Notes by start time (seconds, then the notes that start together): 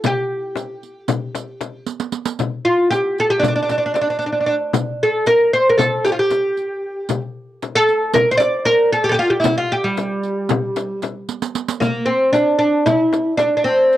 0.04 G4, riq, frame drum
0.56 riq, frame drum
0.83 riq
1.08 riq, frame drum
1.35 riq, frame drum
1.61 riq, frame drum
1.86 riq
2.00 riq
2.12 riq
2.25 riq
2.39 riq, frame drum
2.65 F4
2.90 G4, riq, frame drum
3.18 A4, riq
3.30 G4
3.40 D4, frame drum
3.44 D4, riq
3.56 D4
3.63 D4
3.69 D4, riq, frame drum
3.78 D4
3.86 D4
3.94 D4, riq, frame drum
4.01 D4
4.10 D4
4.19 D4, riq
4.26 D4
4.32 D4
4.41 D4
4.46 D4
4.73 riq, frame drum
5.03 A4
5.26 A#4, riq, frame drum
5.53 C5, riq
5.69 A#4
5.78 A4, riq, frame drum
6.05 G4, riq, frame drum
6.12 F4
6.19 G4
6.30 riq, frame drum
6.57 riq
7.09 riq, frame drum
7.63 riq, frame drum
7.76 A4
7.88 riq
8.14 A#4, riq, frame drum
8.32 C5
8.38 D5, riq, frame drum
8.65 A#4, riq, frame drum
8.92 A4, riq
9.04 G4
9.09 G4 A4
9.14 G4
9.19 F4
9.30 G4
9.40 E4
9.44 riq, frame drum
9.58 F4
9.72 G4
9.84 G3
9.97 riq, frame drum
10.23 riq
10.49 riq, frame drum
10.76 riq, frame drum
11.02 riq, frame drum
11.29 riq
11.42 riq
11.55 riq
11.68 riq
11.80 A#3, riq, frame drum
12.05 C4
12.32 D4, riq, frame drum
12.59 D4, riq
12.86 E4, riq, frame drum
13.13 riq, frame drum
13.37 D4, riq, frame drum
13.57 D4
13.64 C4, riq
13.93 riq